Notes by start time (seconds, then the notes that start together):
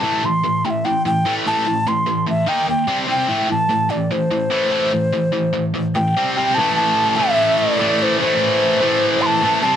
Already playing: A5
0.03 A2 E3 A3
0.24 A2 E3 C6
0.43 A2 E3
0.65 A2 E3 G5
0.70 E5
0.85 A2 E3 G5
1.05 A2 E3 G5
1.25 A2 E3 A3
1.47 A2 E3 A3 A5
1.67 A2 E3
1.87 A2 E3 C6
2.06 A2 E3
2.27 A2 E3 E5
2.47 D#3 A#3 D#4 G5
2.68 D#3 A#3 G5
2.87 C3 G3 C4
3.07 C3 G3 C4 G5
3.29 A2 E3 A3
3.49 A2 E3 A5
3.70 A2 E3
3.90 A2 E3 D5
4.11 A2 E3 C5
4.31 A2 E3
4.50 A2 E3 A3
4.71 A2 E3 A3
4.92 A2 E3
5.13 A2 E3
5.32 A2 E3
5.53 A2 E3
5.74 A2 E3
5.95 A2 E3 G5
6.17 C3 G3 C4
6.35 C3 G3 C4 G5
6.54 A2 A5
6.59 E3 A3
6.76 A5
7.16 E3 A3 E5
7.20 A2
7.59 D5
7.79 A2 E3 A3
7.99 C5 D5
8.20 A2 E3 A3 C5
8.81 A2 E3 A3
9.21 C6
9.26 A5
9.41 A2 E3 A3
9.61 C3 G3 C4 A5